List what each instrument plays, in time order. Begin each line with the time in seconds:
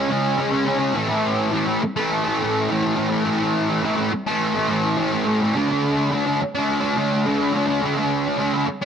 Already playing: distorted electric guitar C#4
0.08 distorted electric guitar C#3 G#3 C#4
0.37 distorted electric guitar C#3 G#3 C#4
0.52 distorted electric guitar G#3 C#4
0.65 distorted electric guitar C#3 G#3 C#4
0.79 distorted electric guitar G#3 C#4
0.94 distorted electric guitar A2 E3 A3
1.08 distorted electric guitar E3 A3
1.52 distorted electric guitar A2 E3 A3
1.66 distorted electric guitar E3 A3
1.82 muted distorted electric guitar stroke
1.96 distorted electric guitar E3 A3
2.24 distorted electric guitar E3 A3
2.41 distorted electric guitar A2 E3 A3
2.69 distorted electric guitar A2 E3 A3
2.83 distorted electric guitar E3 A3
2.96 distorted electric guitar A2 E3 A3
3.10 distorted electric guitar E3 A3
3.24 distorted electric guitar A2 E3 A3
3.39 distorted electric guitar E3 A3
3.82 distorted electric guitar A2 E3 A3
3.96 distorted electric guitar E3 A3
4.12 muted distorted electric guitar stroke
4.26 distorted electric guitar E3 A3
4.54 distorted electric guitar E3 A3
4.68 distorted electric guitar A2 E3 A3
4.97 distorted electric guitar A2 E3 A3
5.12 distorted electric guitar E3 A3
5.25 distorted electric guitar A2 E3 A3
5.41 distorted electric guitar E3 A3
5.55 distorted electric guitar D3 A3 D4
5.70 distorted electric guitar A3 D4
6.11 distorted electric guitar D3 A3 D4
6.26 distorted electric guitar A3 D4
6.41 muted distorted electric guitar stroke
6.55 distorted electric guitar A3 D4
6.81 distorted electric guitar A3 D4
6.97 distorted electric guitar D3 A3 D4
7.26 distorted electric guitar D3 A3 D4
7.39 distorted electric guitar A3 D4
7.53 distorted electric guitar D3 A3 D4
7.67 distorted electric guitar A3 D4
7.82 distorted electric guitar D3 A3 D4
7.96 distorted electric guitar A3 D4
8.37 distorted electric guitar D3 A3 D4
8.54 distorted electric guitar A3 D4
8.67 muted distorted electric guitar stroke
8.82 distorted electric guitar D4